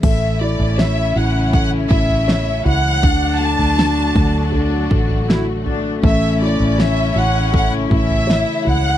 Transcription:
<<
  \new Staff \with { instrumentName = "Violin section" } { \time 4/4 \key a \major \tempo 4 = 80 e''8 d''8 e''8 fis''8 fis''8 e''4 fis''8~ | fis''8 a''2 r4. | e''8 d''8 e''8 fis''8 fis''8 e''4 fis''8 | }
  \new Staff \with { instrumentName = "Felt piano" } { \time 4/4 \key a \major a8 e'8 cis''8 e'8 a8 e'8 cis''8 e'8 | d8 a8 d'8 a8 a'8 a8 fis'8 a8 | a8 e'8 cis''8 e'8 a8 e'8 cis''8 e'8 | }
  \new Staff \with { instrumentName = "Cello section" } { \time 4/4 \key a \major cis'1 | d'2 d'4 e'8 d'8 | cis'2. e'4 | }
  \new Staff \with { instrumentName = "String section" } { \clef bass \time 4/4 \key a \major << { <cis e e'>1 | <d fis fis'>1 | <cis e e'>1 | } \\ { a1~ | a1~ | a1 | } >> }
  \new Staff \with { instrumentName = "Fingered electric bass" } { \clef bass \time 4/4 \key a \major a,,8. a,,8. a,,4 a,,4 cis,8 | d,8. d,8. d,4 a,,4. | a,,8. a,,8. a,,4 a,,8. r16 cis,8 | }
  \new DrumStaff \with { instrumentName = "Drums" } \drummode { \time 4/4 <cymc bd tomfh>8. tomfh16 sn4 <bd tomfh>8 bd16 tomfh16 sn8 tomfh8 | <bd tomfh>8. tomfh16 sn8 bd8 tomfh8 bd16 tomfh16 sn8 tomfh8 | <bd tomfh>8. tomfh16 sn4 <bd tomfh>8 bd16 tomfh16 sn8 tomfh8 | }
>>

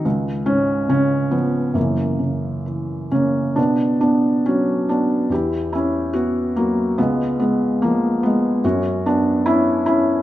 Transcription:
\new Staff \with { instrumentName = "Felt piano" } { \time 4/4 \key cis \phrygian \tempo 4 = 71 << { r8 cis'8 cis'8 b8 <cis e ais>4. <ais cis'>8 | \key b \minor <b d'>8 <b d'>8 <fis cis'>8 <b d'>8 <e' g'>8 <cis' e'>8 <b fis'>8 <fis ais>8 | <gis b>8 <gis b>8 <eis ais>8 <gis b>8 <cis' fis'>8 <b d'>8 <cis' e'>8 <cis' e'>8 | } \\ { cis,8 gis,8 cis8 eis8 fis,8 cis8 e8 cis8 | b,2 e,2 | cis,2 fis,2 | } >> }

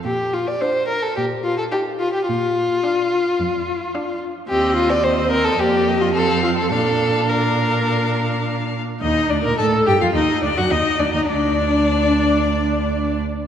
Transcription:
<<
  \new Staff \with { instrumentName = "Violin" } { \time 4/4 \key bes \major \tempo 4 = 107 r4 f''4 r4 a''4 | r4 f''4 r4 f''4 | ees''4 ees''4 d''8 ees''8 f''4 | f''4 f''2~ f''8 r8 |
\key g \minor ees''8 d''16 bes''16 a''8 g''16 f''16 ees''8 d''16 fis''16 ees''8 d''16 ees''16 | d''2.~ d''8 r8 | }
  \new Staff \with { instrumentName = "Violin" } { \time 4/4 \key bes \major g'8 f'16 d''16 c''8 bes'16 a'16 g'8 f'16 a'16 g'8 f'16 g'16 | f'2.~ f'8 r8 | g'8 f'16 d''16 c''8 bes'16 a'16 g'8. f'16 a'8 f'16 a'16 | a'4 bes'2 r4 |
\key g \minor ees'8 d'16 bes'16 a'8 g'16 f'16 ees'8 d'16 fis'16 ees'8 d'16 ees'16 | d'2.~ d'8 r8 | }
  \new Staff \with { instrumentName = "Viola" } { \time 4/4 \key bes \major r4 d'4 r4 ees'4 | r4 d'4 r4 d'4 | c'4 c'4 bes4 c'4 | d'4 d'2~ d'8 r8 |
\key g \minor ees'8 d'16 bes'16 a'8 g'16 f'16 ees'8 d'16 fis'16 ees'8 d'16 ees'16 | d'2.~ d'8 r8 | }
  \new Staff \with { instrumentName = "Cello" } { \clef bass \time 4/4 \key bes \major bes,4 r4 bes,4 r4 | bes,4 r4 f,4 r4 | ees,2 f,2 | bes,2.~ bes,8 r8 |
\key g \minor ees,8 d,16 bes,16 a,8 g,16 f,16 ees,8 d,16 fis,16 ees,8 d,16 ees,16 | d,2.~ d,8 r8 | }
>>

